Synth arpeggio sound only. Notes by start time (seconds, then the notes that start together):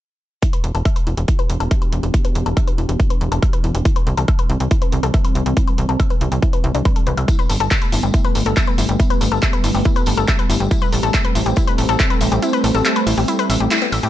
0.42 E4
0.53 B4
0.64 A4
0.75 A4
0.85 E5
0.96 B4
1.07 E4
1.17 G4
1.28 E4
1.39 B4
1.50 A4
1.60 A4
1.71 E5
1.82 B4
1.92 E4
2.03 G4
2.14 E4
2.25 B4
2.35 A4
2.46 A4
2.57 E5
2.67 B4
2.78 E4
2.89 G4
3.00 E4
3.10 B4
3.21 A4
3.32 A4
3.42 E5
3.53 B4
3.64 E4
3.75 G4
3.85 E4
3.96 B4
4.07 A4
4.17 A4
4.28 E5
4.39 B4
4.50 E4
4.60 G4
4.71 E4
4.82 B4
4.92 A4
5.03 A4
5.14 E5
5.25 B4
5.35 E4
5.46 G4
5.57 E4
5.67 B4
5.78 A4
5.89 A4
6.00 E5
6.10 B4
6.21 E4
6.32 G4
6.42 E4
6.53 B4
6.64 E4
6.75 D4
6.85 B4
6.96 A4
7.07 B4
7.17 E5
7.28 E4
7.39 B4
7.50 A4
7.60 A4
7.71 E5
7.82 B4
7.92 E4
8.03 G4
8.14 E4
8.25 B4
8.35 A4
8.46 A4
8.57 E5
8.67 B4
8.78 E4
8.89 G4
9.00 E4
9.10 B4
9.21 A4
9.32 A4
9.42 E5
9.53 B4
9.64 E4
9.75 G4
9.85 E4
9.96 B4
10.07 A4
10.17 A4
10.28 E5
10.39 B4
10.50 E4
10.60 G4
10.71 E4
10.82 B4
10.92 A4
11.03 A4
11.14 E5
11.25 B4
11.35 E4
11.46 G4
11.57 E4
11.67 B4
11.78 A4
11.89 A4
12.00 E5
12.10 B4
12.21 E4
12.32 G4
12.42 E4
12.53 B4
12.64 A4
12.75 A4
12.85 E5
12.96 B4
13.07 E4
13.18 G4
13.28 E4
13.39 B4
13.50 E5
13.60 G4
13.71 E4
13.82 B3
13.93 E5
14.03 G4